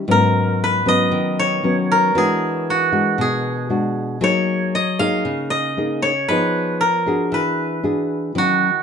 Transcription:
Already playing: G#4
0.08 G#2 F#3 B3 C#4 A#4
0.64 B4
0.86 F#3 B3 C#4 D#5
1.12 D#3
1.39 C#5
1.63 F#3 B3 C#4
1.92 A#4
2.15 E3 G#3 D4 F#4 G#4
2.70 F#4
2.92 G#3 D4 F#4
3.18 B2 G#4
3.69 G#3 D4 F#4
4.21 F#3 A#3 D#4 G#4 C#5
4.75 D#5
4.99 A#3 D#4 G#4 F5
5.25 C#3
5.50 D#5
5.77 A#3 D#4 G#4
6.02 C#5
6.28 F3 B3 D#4 G#4 B4
6.81 A#4
7.06 D4 F#4 G#4
7.32 E3 B4
7.83 D4 F#4 G#4
8.35 D#3 F#3 C#4 F#4

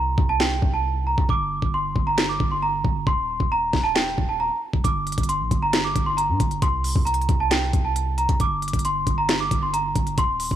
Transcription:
Already playing: C2 A#5
0.18 C2, kick
0.29 A5
0.40 G5, snare, clap
0.62 C2, kick
0.74 A5
1.07 A#5
1.18 C2, kick
1.29 G1 D6, kick
1.62 G1, kick
1.74 C6
1.96 G1, kick
2.07 A#5
2.18 snare, clap
2.29 D6
2.40 G1, kick
2.51 C6
2.62 A#5
2.85 G1, kick
3.07 D#1 C6, kick
3.40 D#1, kick
3.52 A#5
3.73 D#1, kick, snare
3.83 A5
3.95 G5, snare, clap
4.18 D#1, kick
4.29 A5
4.40 A#5
4.73 D#1, kick
4.84 G1 D6, kick, closed hi-hat
5.07 closed hi-hat
5.12 closed hi-hat
5.18 G1, kick, closed hi-hat
5.23 closed hi-hat
5.29 C6, closed hi-hat
5.40 A#1
5.51 G1, kick, closed hi-hat
5.62 A#5
5.73 snare, clap, closed hi-hat
5.85 D6
5.96 G1, kick, closed hi-hat
6.06 C6
6.17 A#5, closed hi-hat
6.29 G2
6.40 G1, kick, closed hi-hat
6.51 closed hi-hat
6.62 C2 C6, kick, closed hi-hat
6.84 open hi-hat
6.96 C2, kick
7.05 A#5, closed hi-hat
7.14 closed hi-hat
7.21 closed hi-hat
7.29 C2, kick, closed hi-hat
7.40 A5
7.51 G5, snare, clap, closed hi-hat
7.73 C2, kick, closed hi-hat
7.85 A5
7.96 closed hi-hat
8.18 A#5, closed hi-hat
8.29 C2, kick, closed hi-hat
8.40 G1 D6, kick, closed hi-hat
8.62 closed hi-hat
8.68 closed hi-hat
8.73 G1, kick, closed hi-hat
8.79 closed hi-hat
8.85 C6, closed hi-hat
9.07 G1, kick, closed hi-hat
9.18 A#5
9.29 snare, clap, closed hi-hat
9.40 D6
9.51 G1, kick, closed hi-hat
9.63 C6
9.74 A#5, closed hi-hat
9.96 G1, kick, closed hi-hat
10.07 closed hi-hat
10.18 D#1 C6, kick, closed hi-hat
10.40 open hi-hat
10.51 D#1, kick

